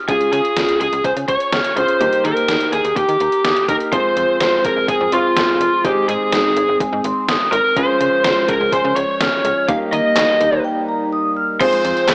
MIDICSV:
0, 0, Header, 1, 7, 480
1, 0, Start_track
1, 0, Key_signature, -4, "minor"
1, 0, Tempo, 480000
1, 86, Time_signature, 4, 2, 24, 8
1, 12146, End_track
2, 0, Start_track
2, 0, Title_t, "Lead electric guitar"
2, 0, Program_c, 0, 29
2, 87, Note_on_c, 0, 68, 91
2, 310, Note_off_c, 0, 68, 0
2, 327, Note_on_c, 0, 68, 92
2, 795, Note_off_c, 0, 68, 0
2, 807, Note_on_c, 0, 68, 86
2, 1030, Note_off_c, 0, 68, 0
2, 1048, Note_on_c, 0, 72, 90
2, 1112, Note_off_c, 0, 72, 0
2, 1288, Note_on_c, 0, 73, 95
2, 1763, Note_off_c, 0, 73, 0
2, 1767, Note_on_c, 0, 72, 91
2, 2247, Note_on_c, 0, 70, 88
2, 2260, Note_off_c, 0, 72, 0
2, 2724, Note_off_c, 0, 70, 0
2, 2728, Note_on_c, 0, 68, 82
2, 2964, Note_off_c, 0, 68, 0
2, 2968, Note_on_c, 0, 67, 77
2, 3647, Note_off_c, 0, 67, 0
2, 3688, Note_on_c, 0, 70, 92
2, 3753, Note_off_c, 0, 70, 0
2, 3927, Note_on_c, 0, 72, 106
2, 4373, Note_off_c, 0, 72, 0
2, 4407, Note_on_c, 0, 72, 99
2, 4630, Note_off_c, 0, 72, 0
2, 4647, Note_on_c, 0, 70, 92
2, 4883, Note_off_c, 0, 70, 0
2, 4887, Note_on_c, 0, 68, 94
2, 5110, Note_off_c, 0, 68, 0
2, 5127, Note_on_c, 0, 65, 93
2, 5847, Note_on_c, 0, 67, 89
2, 5868, Note_off_c, 0, 65, 0
2, 6083, Note_off_c, 0, 67, 0
2, 6087, Note_on_c, 0, 68, 83
2, 6766, Note_off_c, 0, 68, 0
2, 7525, Note_on_c, 0, 70, 79
2, 7749, Note_off_c, 0, 70, 0
2, 7766, Note_on_c, 0, 72, 87
2, 8233, Note_off_c, 0, 72, 0
2, 8245, Note_on_c, 0, 72, 88
2, 8485, Note_on_c, 0, 70, 83
2, 8492, Note_off_c, 0, 72, 0
2, 8725, Note_on_c, 0, 72, 90
2, 8732, Note_off_c, 0, 70, 0
2, 8960, Note_off_c, 0, 72, 0
2, 8964, Note_on_c, 0, 73, 100
2, 9684, Note_on_c, 0, 77, 106
2, 9707, Note_off_c, 0, 73, 0
2, 9749, Note_off_c, 0, 77, 0
2, 9924, Note_on_c, 0, 75, 94
2, 10605, Note_off_c, 0, 75, 0
2, 11607, Note_on_c, 0, 72, 106
2, 12086, Note_on_c, 0, 68, 94
2, 12101, Note_off_c, 0, 72, 0
2, 12146, Note_off_c, 0, 68, 0
2, 12146, End_track
3, 0, Start_track
3, 0, Title_t, "Vibraphone"
3, 0, Program_c, 1, 11
3, 85, Note_on_c, 1, 56, 89
3, 260, Note_off_c, 1, 56, 0
3, 326, Note_on_c, 1, 61, 72
3, 500, Note_off_c, 1, 61, 0
3, 565, Note_on_c, 1, 65, 81
3, 740, Note_off_c, 1, 65, 0
3, 805, Note_on_c, 1, 68, 79
3, 980, Note_off_c, 1, 68, 0
3, 1045, Note_on_c, 1, 80, 90
3, 1220, Note_off_c, 1, 80, 0
3, 1286, Note_on_c, 1, 85, 86
3, 1460, Note_off_c, 1, 85, 0
3, 1526, Note_on_c, 1, 89, 91
3, 1700, Note_off_c, 1, 89, 0
3, 1765, Note_on_c, 1, 89, 85
3, 1940, Note_off_c, 1, 89, 0
3, 2006, Note_on_c, 1, 55, 88
3, 2180, Note_off_c, 1, 55, 0
3, 2246, Note_on_c, 1, 58, 72
3, 2420, Note_off_c, 1, 58, 0
3, 2486, Note_on_c, 1, 63, 77
3, 2660, Note_off_c, 1, 63, 0
3, 2726, Note_on_c, 1, 67, 77
3, 2900, Note_off_c, 1, 67, 0
3, 2966, Note_on_c, 1, 79, 89
3, 3140, Note_off_c, 1, 79, 0
3, 3206, Note_on_c, 1, 82, 86
3, 3380, Note_off_c, 1, 82, 0
3, 3446, Note_on_c, 1, 87, 90
3, 3620, Note_off_c, 1, 87, 0
3, 3687, Note_on_c, 1, 89, 84
3, 3861, Note_off_c, 1, 89, 0
3, 3926, Note_on_c, 1, 56, 88
3, 4100, Note_off_c, 1, 56, 0
3, 4166, Note_on_c, 1, 60, 73
3, 4341, Note_off_c, 1, 60, 0
3, 4407, Note_on_c, 1, 65, 82
3, 4581, Note_off_c, 1, 65, 0
3, 4646, Note_on_c, 1, 68, 78
3, 4820, Note_off_c, 1, 68, 0
3, 4886, Note_on_c, 1, 80, 94
3, 5060, Note_off_c, 1, 80, 0
3, 5126, Note_on_c, 1, 84, 90
3, 5300, Note_off_c, 1, 84, 0
3, 5366, Note_on_c, 1, 89, 97
3, 5540, Note_off_c, 1, 89, 0
3, 5606, Note_on_c, 1, 89, 91
3, 5780, Note_off_c, 1, 89, 0
3, 5846, Note_on_c, 1, 56, 88
3, 6020, Note_off_c, 1, 56, 0
3, 6086, Note_on_c, 1, 60, 75
3, 6260, Note_off_c, 1, 60, 0
3, 6326, Note_on_c, 1, 63, 81
3, 6500, Note_off_c, 1, 63, 0
3, 6566, Note_on_c, 1, 68, 82
3, 6740, Note_off_c, 1, 68, 0
3, 6806, Note_on_c, 1, 80, 97
3, 6980, Note_off_c, 1, 80, 0
3, 7046, Note_on_c, 1, 84, 89
3, 7220, Note_off_c, 1, 84, 0
3, 7286, Note_on_c, 1, 87, 97
3, 7460, Note_off_c, 1, 87, 0
3, 7526, Note_on_c, 1, 89, 93
3, 7700, Note_off_c, 1, 89, 0
3, 7766, Note_on_c, 1, 56, 90
3, 7940, Note_off_c, 1, 56, 0
3, 8006, Note_on_c, 1, 61, 78
3, 8180, Note_off_c, 1, 61, 0
3, 8246, Note_on_c, 1, 65, 85
3, 8420, Note_off_c, 1, 65, 0
3, 8486, Note_on_c, 1, 68, 80
3, 8660, Note_off_c, 1, 68, 0
3, 8725, Note_on_c, 1, 80, 98
3, 8900, Note_off_c, 1, 80, 0
3, 8965, Note_on_c, 1, 85, 92
3, 9140, Note_off_c, 1, 85, 0
3, 9206, Note_on_c, 1, 89, 96
3, 9380, Note_off_c, 1, 89, 0
3, 9445, Note_on_c, 1, 89, 92
3, 9620, Note_off_c, 1, 89, 0
3, 9685, Note_on_c, 1, 55, 94
3, 9860, Note_off_c, 1, 55, 0
3, 9925, Note_on_c, 1, 58, 82
3, 10100, Note_off_c, 1, 58, 0
3, 10165, Note_on_c, 1, 63, 84
3, 10340, Note_off_c, 1, 63, 0
3, 10405, Note_on_c, 1, 67, 83
3, 10580, Note_off_c, 1, 67, 0
3, 10645, Note_on_c, 1, 79, 99
3, 10820, Note_off_c, 1, 79, 0
3, 10885, Note_on_c, 1, 82, 90
3, 11060, Note_off_c, 1, 82, 0
3, 11125, Note_on_c, 1, 87, 98
3, 11300, Note_off_c, 1, 87, 0
3, 11365, Note_on_c, 1, 89, 94
3, 11540, Note_off_c, 1, 89, 0
3, 11605, Note_on_c, 1, 56, 94
3, 11780, Note_off_c, 1, 56, 0
3, 11846, Note_on_c, 1, 60, 76
3, 12020, Note_off_c, 1, 60, 0
3, 12085, Note_on_c, 1, 65, 87
3, 12146, Note_off_c, 1, 65, 0
3, 12146, End_track
4, 0, Start_track
4, 0, Title_t, "Grand piano"
4, 0, Program_c, 2, 0
4, 86, Note_on_c, 2, 61, 62
4, 86, Note_on_c, 2, 65, 56
4, 86, Note_on_c, 2, 68, 67
4, 1732, Note_off_c, 2, 61, 0
4, 1732, Note_off_c, 2, 65, 0
4, 1732, Note_off_c, 2, 68, 0
4, 1765, Note_on_c, 2, 68, 52
4, 1766, Note_on_c, 2, 61, 46
4, 1766, Note_on_c, 2, 65, 44
4, 2005, Note_off_c, 2, 68, 0
4, 2005, Note_on_c, 2, 58, 62
4, 2005, Note_on_c, 2, 63, 56
4, 2005, Note_on_c, 2, 67, 69
4, 2006, Note_off_c, 2, 61, 0
4, 2006, Note_off_c, 2, 65, 0
4, 3652, Note_off_c, 2, 58, 0
4, 3652, Note_off_c, 2, 63, 0
4, 3652, Note_off_c, 2, 67, 0
4, 3687, Note_on_c, 2, 58, 54
4, 3687, Note_on_c, 2, 63, 50
4, 3687, Note_on_c, 2, 67, 60
4, 3926, Note_off_c, 2, 58, 0
4, 3926, Note_off_c, 2, 63, 0
4, 3926, Note_off_c, 2, 67, 0
4, 3926, Note_on_c, 2, 60, 65
4, 3926, Note_on_c, 2, 65, 58
4, 3926, Note_on_c, 2, 68, 67
4, 5102, Note_off_c, 2, 60, 0
4, 5102, Note_off_c, 2, 65, 0
4, 5102, Note_off_c, 2, 68, 0
4, 5126, Note_on_c, 2, 60, 50
4, 5126, Note_on_c, 2, 65, 45
4, 5126, Note_on_c, 2, 68, 54
4, 5832, Note_off_c, 2, 60, 0
4, 5832, Note_off_c, 2, 68, 0
4, 5846, Note_off_c, 2, 65, 0
4, 5846, Note_on_c, 2, 60, 63
4, 5846, Note_on_c, 2, 63, 57
4, 5847, Note_on_c, 2, 68, 71
4, 7728, Note_off_c, 2, 60, 0
4, 7728, Note_off_c, 2, 63, 0
4, 7728, Note_off_c, 2, 68, 0
4, 7766, Note_on_c, 2, 61, 64
4, 7766, Note_on_c, 2, 65, 59
4, 7766, Note_on_c, 2, 68, 72
4, 9647, Note_off_c, 2, 61, 0
4, 9647, Note_off_c, 2, 65, 0
4, 9648, Note_off_c, 2, 68, 0
4, 9685, Note_on_c, 2, 58, 64
4, 9685, Note_on_c, 2, 63, 60
4, 9685, Note_on_c, 2, 67, 69
4, 11567, Note_off_c, 2, 58, 0
4, 11567, Note_off_c, 2, 63, 0
4, 11567, Note_off_c, 2, 67, 0
4, 11606, Note_on_c, 2, 60, 65
4, 11606, Note_on_c, 2, 65, 59
4, 11606, Note_on_c, 2, 68, 73
4, 12146, Note_off_c, 2, 60, 0
4, 12146, Note_off_c, 2, 65, 0
4, 12146, Note_off_c, 2, 68, 0
4, 12146, End_track
5, 0, Start_track
5, 0, Title_t, "Analog synth pad"
5, 0, Program_c, 3, 89
5, 3925, Note_on_c, 3, 56, 70
5, 3926, Note_on_c, 3, 53, 82
5, 3926, Note_on_c, 3, 60, 91
5, 5826, Note_off_c, 3, 53, 0
5, 5826, Note_off_c, 3, 60, 0
5, 5846, Note_on_c, 3, 51, 81
5, 5846, Note_on_c, 3, 60, 86
5, 7727, Note_off_c, 3, 56, 0
5, 7747, Note_off_c, 3, 51, 0
5, 7747, Note_off_c, 3, 60, 0
5, 7765, Note_on_c, 3, 53, 79
5, 7765, Note_on_c, 3, 61, 91
5, 7766, Note_on_c, 3, 56, 75
5, 9666, Note_off_c, 3, 53, 0
5, 9666, Note_off_c, 3, 56, 0
5, 9666, Note_off_c, 3, 61, 0
5, 9684, Note_on_c, 3, 55, 81
5, 9684, Note_on_c, 3, 63, 90
5, 9685, Note_on_c, 3, 58, 74
5, 11586, Note_off_c, 3, 55, 0
5, 11586, Note_off_c, 3, 58, 0
5, 11586, Note_off_c, 3, 63, 0
5, 11605, Note_on_c, 3, 53, 80
5, 11605, Note_on_c, 3, 56, 73
5, 11605, Note_on_c, 3, 60, 88
5, 12146, Note_off_c, 3, 53, 0
5, 12146, Note_off_c, 3, 56, 0
5, 12146, Note_off_c, 3, 60, 0
5, 12146, End_track
6, 0, Start_track
6, 0, Title_t, "FM bass"
6, 0, Program_c, 4, 39
6, 86, Note_on_c, 4, 37, 105
6, 174, Note_off_c, 4, 37, 0
6, 326, Note_on_c, 4, 49, 92
6, 413, Note_off_c, 4, 49, 0
6, 566, Note_on_c, 4, 37, 96
6, 654, Note_off_c, 4, 37, 0
6, 807, Note_on_c, 4, 37, 95
6, 894, Note_off_c, 4, 37, 0
6, 926, Note_on_c, 4, 37, 95
6, 1014, Note_off_c, 4, 37, 0
6, 1045, Note_on_c, 4, 37, 102
6, 1133, Note_off_c, 4, 37, 0
6, 1166, Note_on_c, 4, 49, 93
6, 1254, Note_off_c, 4, 49, 0
6, 1285, Note_on_c, 4, 37, 94
6, 1373, Note_off_c, 4, 37, 0
6, 1526, Note_on_c, 4, 37, 109
6, 1613, Note_off_c, 4, 37, 0
6, 1766, Note_on_c, 4, 37, 104
6, 1853, Note_off_c, 4, 37, 0
6, 2005, Note_on_c, 4, 39, 105
6, 2093, Note_off_c, 4, 39, 0
6, 2246, Note_on_c, 4, 51, 95
6, 2333, Note_off_c, 4, 51, 0
6, 2486, Note_on_c, 4, 39, 94
6, 2573, Note_off_c, 4, 39, 0
6, 2726, Note_on_c, 4, 39, 99
6, 2814, Note_off_c, 4, 39, 0
6, 2846, Note_on_c, 4, 39, 91
6, 2934, Note_off_c, 4, 39, 0
6, 2965, Note_on_c, 4, 39, 100
6, 3053, Note_off_c, 4, 39, 0
6, 3086, Note_on_c, 4, 51, 88
6, 3173, Note_off_c, 4, 51, 0
6, 3206, Note_on_c, 4, 39, 99
6, 3294, Note_off_c, 4, 39, 0
6, 3446, Note_on_c, 4, 39, 92
6, 3533, Note_off_c, 4, 39, 0
6, 3685, Note_on_c, 4, 39, 98
6, 3773, Note_off_c, 4, 39, 0
6, 3926, Note_on_c, 4, 29, 112
6, 4014, Note_off_c, 4, 29, 0
6, 4166, Note_on_c, 4, 41, 91
6, 4253, Note_off_c, 4, 41, 0
6, 4406, Note_on_c, 4, 29, 106
6, 4493, Note_off_c, 4, 29, 0
6, 4649, Note_on_c, 4, 29, 99
6, 4735, Note_off_c, 4, 29, 0
6, 4766, Note_on_c, 4, 29, 93
6, 4853, Note_off_c, 4, 29, 0
6, 4884, Note_on_c, 4, 29, 98
6, 4972, Note_off_c, 4, 29, 0
6, 5006, Note_on_c, 4, 41, 100
6, 5094, Note_off_c, 4, 41, 0
6, 5126, Note_on_c, 4, 29, 103
6, 5214, Note_off_c, 4, 29, 0
6, 5366, Note_on_c, 4, 29, 103
6, 5454, Note_off_c, 4, 29, 0
6, 5606, Note_on_c, 4, 29, 104
6, 5694, Note_off_c, 4, 29, 0
6, 5846, Note_on_c, 4, 32, 112
6, 5934, Note_off_c, 4, 32, 0
6, 6086, Note_on_c, 4, 44, 99
6, 6173, Note_off_c, 4, 44, 0
6, 6326, Note_on_c, 4, 32, 104
6, 6414, Note_off_c, 4, 32, 0
6, 6566, Note_on_c, 4, 32, 104
6, 6654, Note_off_c, 4, 32, 0
6, 6686, Note_on_c, 4, 32, 99
6, 6774, Note_off_c, 4, 32, 0
6, 6804, Note_on_c, 4, 32, 104
6, 6892, Note_off_c, 4, 32, 0
6, 6926, Note_on_c, 4, 44, 99
6, 7014, Note_off_c, 4, 44, 0
6, 7046, Note_on_c, 4, 32, 106
6, 7134, Note_off_c, 4, 32, 0
6, 7286, Note_on_c, 4, 32, 97
6, 7374, Note_off_c, 4, 32, 0
6, 7526, Note_on_c, 4, 32, 103
6, 7614, Note_off_c, 4, 32, 0
6, 7766, Note_on_c, 4, 37, 101
6, 7853, Note_off_c, 4, 37, 0
6, 8005, Note_on_c, 4, 49, 91
6, 8093, Note_off_c, 4, 49, 0
6, 8245, Note_on_c, 4, 37, 100
6, 8333, Note_off_c, 4, 37, 0
6, 8488, Note_on_c, 4, 37, 97
6, 8575, Note_off_c, 4, 37, 0
6, 8605, Note_on_c, 4, 37, 97
6, 8693, Note_off_c, 4, 37, 0
6, 8724, Note_on_c, 4, 37, 104
6, 8812, Note_off_c, 4, 37, 0
6, 8845, Note_on_c, 4, 49, 99
6, 8933, Note_off_c, 4, 49, 0
6, 8965, Note_on_c, 4, 37, 95
6, 9053, Note_off_c, 4, 37, 0
6, 9206, Note_on_c, 4, 37, 110
6, 9293, Note_off_c, 4, 37, 0
6, 9445, Note_on_c, 4, 37, 107
6, 9533, Note_off_c, 4, 37, 0
6, 9686, Note_on_c, 4, 39, 105
6, 9774, Note_off_c, 4, 39, 0
6, 9925, Note_on_c, 4, 51, 100
6, 10013, Note_off_c, 4, 51, 0
6, 10165, Note_on_c, 4, 39, 94
6, 10253, Note_off_c, 4, 39, 0
6, 10405, Note_on_c, 4, 39, 102
6, 10493, Note_off_c, 4, 39, 0
6, 10524, Note_on_c, 4, 39, 92
6, 10613, Note_off_c, 4, 39, 0
6, 11606, Note_on_c, 4, 29, 114
6, 11694, Note_off_c, 4, 29, 0
6, 11845, Note_on_c, 4, 41, 92
6, 11933, Note_off_c, 4, 41, 0
6, 12085, Note_on_c, 4, 29, 107
6, 12146, Note_off_c, 4, 29, 0
6, 12146, End_track
7, 0, Start_track
7, 0, Title_t, "Drums"
7, 85, Note_on_c, 9, 42, 69
7, 86, Note_on_c, 9, 36, 110
7, 185, Note_off_c, 9, 42, 0
7, 186, Note_off_c, 9, 36, 0
7, 206, Note_on_c, 9, 42, 46
7, 306, Note_off_c, 9, 42, 0
7, 327, Note_on_c, 9, 42, 70
7, 427, Note_off_c, 9, 42, 0
7, 448, Note_on_c, 9, 42, 47
7, 548, Note_off_c, 9, 42, 0
7, 566, Note_on_c, 9, 38, 106
7, 566, Note_on_c, 9, 42, 77
7, 666, Note_off_c, 9, 38, 0
7, 666, Note_off_c, 9, 42, 0
7, 686, Note_on_c, 9, 42, 52
7, 786, Note_off_c, 9, 42, 0
7, 806, Note_on_c, 9, 42, 65
7, 906, Note_off_c, 9, 42, 0
7, 926, Note_on_c, 9, 42, 48
7, 1026, Note_off_c, 9, 42, 0
7, 1044, Note_on_c, 9, 36, 90
7, 1046, Note_on_c, 9, 42, 68
7, 1144, Note_off_c, 9, 36, 0
7, 1146, Note_off_c, 9, 42, 0
7, 1166, Note_on_c, 9, 42, 55
7, 1266, Note_off_c, 9, 42, 0
7, 1283, Note_on_c, 9, 42, 72
7, 1285, Note_on_c, 9, 36, 94
7, 1383, Note_off_c, 9, 42, 0
7, 1385, Note_off_c, 9, 36, 0
7, 1403, Note_on_c, 9, 42, 47
7, 1503, Note_off_c, 9, 42, 0
7, 1525, Note_on_c, 9, 38, 108
7, 1526, Note_on_c, 9, 42, 73
7, 1625, Note_off_c, 9, 38, 0
7, 1626, Note_off_c, 9, 42, 0
7, 1645, Note_on_c, 9, 42, 55
7, 1745, Note_off_c, 9, 42, 0
7, 1767, Note_on_c, 9, 42, 66
7, 1867, Note_off_c, 9, 42, 0
7, 1884, Note_on_c, 9, 42, 43
7, 1984, Note_off_c, 9, 42, 0
7, 2006, Note_on_c, 9, 42, 67
7, 2106, Note_off_c, 9, 42, 0
7, 2127, Note_on_c, 9, 42, 47
7, 2227, Note_off_c, 9, 42, 0
7, 2247, Note_on_c, 9, 42, 67
7, 2347, Note_off_c, 9, 42, 0
7, 2367, Note_on_c, 9, 42, 47
7, 2467, Note_off_c, 9, 42, 0
7, 2484, Note_on_c, 9, 38, 106
7, 2485, Note_on_c, 9, 42, 75
7, 2585, Note_off_c, 9, 38, 0
7, 2585, Note_off_c, 9, 42, 0
7, 2604, Note_on_c, 9, 42, 54
7, 2704, Note_off_c, 9, 42, 0
7, 2726, Note_on_c, 9, 42, 65
7, 2826, Note_off_c, 9, 42, 0
7, 2846, Note_on_c, 9, 42, 50
7, 2946, Note_off_c, 9, 42, 0
7, 2964, Note_on_c, 9, 36, 93
7, 2966, Note_on_c, 9, 42, 67
7, 3064, Note_off_c, 9, 36, 0
7, 3066, Note_off_c, 9, 42, 0
7, 3087, Note_on_c, 9, 42, 56
7, 3187, Note_off_c, 9, 42, 0
7, 3203, Note_on_c, 9, 42, 69
7, 3303, Note_off_c, 9, 42, 0
7, 3323, Note_on_c, 9, 42, 48
7, 3423, Note_off_c, 9, 42, 0
7, 3446, Note_on_c, 9, 38, 106
7, 3446, Note_on_c, 9, 42, 72
7, 3546, Note_off_c, 9, 38, 0
7, 3546, Note_off_c, 9, 42, 0
7, 3564, Note_on_c, 9, 42, 54
7, 3664, Note_off_c, 9, 42, 0
7, 3685, Note_on_c, 9, 36, 86
7, 3686, Note_on_c, 9, 42, 67
7, 3785, Note_off_c, 9, 36, 0
7, 3786, Note_off_c, 9, 42, 0
7, 3804, Note_on_c, 9, 42, 44
7, 3904, Note_off_c, 9, 42, 0
7, 3925, Note_on_c, 9, 42, 71
7, 3926, Note_on_c, 9, 36, 113
7, 4025, Note_off_c, 9, 42, 0
7, 4026, Note_off_c, 9, 36, 0
7, 4167, Note_on_c, 9, 42, 72
7, 4267, Note_off_c, 9, 42, 0
7, 4405, Note_on_c, 9, 38, 105
7, 4406, Note_on_c, 9, 42, 78
7, 4505, Note_off_c, 9, 38, 0
7, 4506, Note_off_c, 9, 42, 0
7, 4646, Note_on_c, 9, 42, 68
7, 4649, Note_on_c, 9, 36, 86
7, 4746, Note_off_c, 9, 42, 0
7, 4749, Note_off_c, 9, 36, 0
7, 4884, Note_on_c, 9, 36, 95
7, 4885, Note_on_c, 9, 42, 74
7, 4984, Note_off_c, 9, 36, 0
7, 4985, Note_off_c, 9, 42, 0
7, 5123, Note_on_c, 9, 42, 75
7, 5223, Note_off_c, 9, 42, 0
7, 5366, Note_on_c, 9, 38, 111
7, 5367, Note_on_c, 9, 42, 76
7, 5466, Note_off_c, 9, 38, 0
7, 5467, Note_off_c, 9, 42, 0
7, 5608, Note_on_c, 9, 42, 66
7, 5708, Note_off_c, 9, 42, 0
7, 5846, Note_on_c, 9, 36, 109
7, 5846, Note_on_c, 9, 42, 70
7, 5946, Note_off_c, 9, 36, 0
7, 5946, Note_off_c, 9, 42, 0
7, 6087, Note_on_c, 9, 42, 71
7, 6187, Note_off_c, 9, 42, 0
7, 6325, Note_on_c, 9, 38, 110
7, 6326, Note_on_c, 9, 42, 77
7, 6425, Note_off_c, 9, 38, 0
7, 6426, Note_off_c, 9, 42, 0
7, 6566, Note_on_c, 9, 42, 68
7, 6666, Note_off_c, 9, 42, 0
7, 6804, Note_on_c, 9, 36, 94
7, 6806, Note_on_c, 9, 42, 70
7, 6904, Note_off_c, 9, 36, 0
7, 6906, Note_off_c, 9, 42, 0
7, 7043, Note_on_c, 9, 42, 74
7, 7143, Note_off_c, 9, 42, 0
7, 7286, Note_on_c, 9, 38, 115
7, 7286, Note_on_c, 9, 42, 72
7, 7386, Note_off_c, 9, 38, 0
7, 7386, Note_off_c, 9, 42, 0
7, 7527, Note_on_c, 9, 42, 70
7, 7627, Note_off_c, 9, 42, 0
7, 7766, Note_on_c, 9, 36, 117
7, 7766, Note_on_c, 9, 42, 73
7, 7866, Note_off_c, 9, 36, 0
7, 7866, Note_off_c, 9, 42, 0
7, 8006, Note_on_c, 9, 42, 74
7, 8106, Note_off_c, 9, 42, 0
7, 8244, Note_on_c, 9, 38, 108
7, 8245, Note_on_c, 9, 42, 77
7, 8344, Note_off_c, 9, 38, 0
7, 8345, Note_off_c, 9, 42, 0
7, 8485, Note_on_c, 9, 42, 70
7, 8488, Note_on_c, 9, 36, 89
7, 8585, Note_off_c, 9, 42, 0
7, 8588, Note_off_c, 9, 36, 0
7, 8724, Note_on_c, 9, 36, 95
7, 8726, Note_on_c, 9, 42, 74
7, 8824, Note_off_c, 9, 36, 0
7, 8826, Note_off_c, 9, 42, 0
7, 8963, Note_on_c, 9, 42, 75
7, 9063, Note_off_c, 9, 42, 0
7, 9206, Note_on_c, 9, 38, 113
7, 9206, Note_on_c, 9, 42, 76
7, 9306, Note_off_c, 9, 38, 0
7, 9306, Note_off_c, 9, 42, 0
7, 9447, Note_on_c, 9, 42, 71
7, 9547, Note_off_c, 9, 42, 0
7, 9685, Note_on_c, 9, 42, 72
7, 9686, Note_on_c, 9, 36, 113
7, 9785, Note_off_c, 9, 42, 0
7, 9786, Note_off_c, 9, 36, 0
7, 9926, Note_on_c, 9, 42, 74
7, 10026, Note_off_c, 9, 42, 0
7, 10165, Note_on_c, 9, 38, 109
7, 10165, Note_on_c, 9, 39, 91
7, 10165, Note_on_c, 9, 42, 80
7, 10265, Note_off_c, 9, 38, 0
7, 10265, Note_off_c, 9, 39, 0
7, 10265, Note_off_c, 9, 42, 0
7, 10406, Note_on_c, 9, 42, 69
7, 10506, Note_off_c, 9, 42, 0
7, 11606, Note_on_c, 9, 36, 116
7, 11606, Note_on_c, 9, 42, 74
7, 11606, Note_on_c, 9, 49, 97
7, 11706, Note_off_c, 9, 36, 0
7, 11706, Note_off_c, 9, 42, 0
7, 11706, Note_off_c, 9, 49, 0
7, 11726, Note_on_c, 9, 42, 50
7, 11826, Note_off_c, 9, 42, 0
7, 11847, Note_on_c, 9, 42, 73
7, 11947, Note_off_c, 9, 42, 0
7, 11968, Note_on_c, 9, 42, 52
7, 12068, Note_off_c, 9, 42, 0
7, 12085, Note_on_c, 9, 38, 110
7, 12085, Note_on_c, 9, 39, 87
7, 12085, Note_on_c, 9, 42, 78
7, 12146, Note_off_c, 9, 38, 0
7, 12146, Note_off_c, 9, 39, 0
7, 12146, Note_off_c, 9, 42, 0
7, 12146, End_track
0, 0, End_of_file